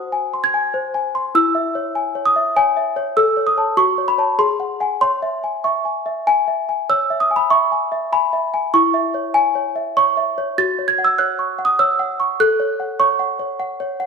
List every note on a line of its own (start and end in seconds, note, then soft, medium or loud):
0.00 1.30 F#4 medium
0.00 0.25 C5 soft
0.00 1.37 F#5 medium
0.00 0.43 D#6 loud
0.12 0.45 G#5 medium
0.34 0.66 C6 medium
0.44 1.35 G#6 loud
0.54 0.86 G#5 medium
0.74 1.06 C5 medium
0.94 1.27 G#5 medium
1.15 1.35 C6 medium
1.35 3.13 E4 medium
1.35 2.26 E6 loud
1.55 1.87 E5 medium
1.75 2.07 C#5 medium
1.95 2.28 G#5 medium
2.15 2.48 C#5 soft
2.26 2.56 D#6 loud
2.36 2.68 E5 medium
2.56 2.89 C#5 medium
2.56 3.17 G#5 loud
2.77 3.09 E5 medium
2.96 3.17 C#5 medium
3.17 3.76 A4 medium
3.17 3.47 E6 loud
3.37 3.56 C#5 medium
3.47 3.78 D#6 medium
3.57 3.76 C#5 soft
3.57 3.76 A5 soft
3.77 4.37 F#4 medium
3.77 4.08 C#6 loud
3.98 4.17 C#5 soft
4.08 4.39 B5 loud
4.18 4.37 C#5 medium
4.18 4.38 A5 medium
4.39 5.00 G#4 medium
4.39 5.00 C6 loud
4.60 4.79 F#5 medium
4.80 5.00 F#5 medium
4.80 5.00 G#5 medium
5.01 6.85 C#5 medium
5.01 5.65 C6 loud
5.22 5.56 E5 medium
5.44 5.77 G#5 soft
5.64 5.98 E5 soft
5.64 6.27 C#6 medium
5.85 6.19 G#5 soft
6.06 6.39 E5 soft
6.27 6.60 G#5 loud
6.48 6.81 E5 soft
6.69 6.89 G#5 soft
6.90 8.69 C#5 medium
6.90 7.20 E6 loud
7.10 7.43 E5 medium
7.20 7.36 D#6 medium
7.31 7.63 G#5 soft
7.36 7.51 B5 medium
7.50 7.83 E5 medium
7.50 8.12 C#6 loud
7.72 8.04 G#5 soft
7.92 8.24 E5 medium
8.12 8.45 G#5 medium
8.12 8.74 B5 loud
8.33 8.65 E5 medium
8.54 8.74 G#5 medium
8.74 10.53 E4 medium
8.74 9.34 C#6 loud
8.94 9.26 E5 medium
9.14 9.47 C#5 medium
9.34 9.96 G#5 loud
9.55 9.88 C#5 medium
9.76 10.08 E5 medium
9.97 10.29 C#5 medium
9.97 10.57 C#6 loud
10.17 10.49 E5 medium
10.38 10.58 C#5 medium
10.58 12.35 F#4 medium
10.58 10.88 A6 loud
10.79 11.10 C#5 soft
10.88 11.03 G#6 loud
10.98 11.30 F#5 medium
11.04 11.19 E6 loud
11.18 11.51 C#5 medium
11.18 11.63 F#6 loud
11.39 11.71 C#6 medium
11.59 11.90 F#5 medium
11.65 11.79 D#6 medium
11.79 12.11 C#5 medium
11.79 12.39 E6 loud
11.99 12.31 F#5 medium
12.20 12.39 C#6 medium
12.40 14.06 A4 medium
12.40 13.00 F#6 loud
12.60 12.92 C#5 medium
12.80 13.12 F#5 soft
13.00 13.32 C#5 medium
13.00 13.60 C#6 loud
13.19 13.52 F#5 medium
13.39 13.72 C#5 medium
13.60 13.92 F#5 medium
13.80 14.06 C#5 medium
14.00 14.06 F#5 medium